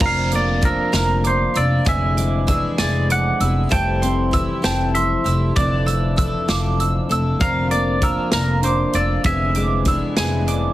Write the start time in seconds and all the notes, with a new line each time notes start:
Already playing: F4
0.00 F1 F2 D3 F3 A#3 D4 F4 A#4 D5 A#5, kick, crash
0.06 F5
0.32 A#3 D5 D6, closed hi-hat
0.61 F3 A#3 D4 F4 A#4 E6, kick, closed hi-hat
0.92 F1 F2 D3 F3 A#3 D4 F4 A#4 C5 A#5, snare, closed hi-hat
0.96 A#4
1.24 F2 D4 C5 D6, closed hi-hat
1.54 F1 F3 A#3 F4 A#4 D5 E6, closed hi-hat
1.85 F1 F2 D3 G#3 B3 E4 G#4 B4 D5 E5 G#5, kick, closed hi-hat
2.17 G#3 D6, closed hi-hat
2.47 E3 G#3 B3 D4 E4 G#4 E6, kick, closed hi-hat
2.78 F1 F2 D3 G#3 B3 E4 G#4 B4 D5 E5 G#5, snare, closed hi-hat
3.09 F2 D4 F#5 D6, closed hi-hat
3.40 F1 G#3 B3 E4 G#4 E6, closed hi-hat
3.69 F1 F2 C3 E3 G3 A3 E4 G4 A4 C5 G5 A5, kick, closed hi-hat
4.02 C4 C6, closed hi-hat
4.31 E3 A3 E4 G4 E6, kick, closed hi-hat
4.62 F1 F2 C3 E3 G3 A3 C4 E4 G4 A4 C5 G5 A5, snare, closed hi-hat
4.94 F2 E4 E5 C6, closed hi-hat
5.24 F1 E3 A3 E4 G4 E6, closed hi-hat
5.56 F1 F2 D3 E3 A3 D4 E4 A4 D5 D6, kick, closed hi-hat
5.86 A3 E6, closed hi-hat
6.16 E3 F3 A3 D4 A4 E6, kick, closed hi-hat
6.48 F1 F2 D3 E3 F3 A3 D4 A4 F5 D6, snare, closed hi-hat
6.80 F2 E6, closed hi-hat
7.09 F1 E3 A3 D4 A4 E6, closed hi-hat
7.39 F1 F2 D3 F3 A#3 D4 A#4 D5 F5 A#5, kick, closed hi-hat
7.43 F4
7.71 A#3 D5 D6, closed hi-hat
8.01 F3 A#3 D4 F4 A#4 E6, kick, closed hi-hat
8.32 F1 F2 D3 F3 A#3 D4 F4 A#4 D5 A#5, snare, closed hi-hat
8.62 F2 D4 C5 D6, closed hi-hat
8.93 F1 F3 A#3 D4 F4 D5 E6, closed hi-hat
9.24 F1 F2 D3 G#3 B3 D4 E4 G#4 B4 E5 G#5, kick, closed hi-hat
9.55 G#3 D6, closed hi-hat
9.85 E3 G#3 B3 D4 E4 G#4 E6, kick, closed hi-hat
10.16 F1 F2 D3 G#3 B3 D4 E4 G#4 B4 E5 G#5, snare, closed hi-hat
10.46 F2 D4 D6, closed hi-hat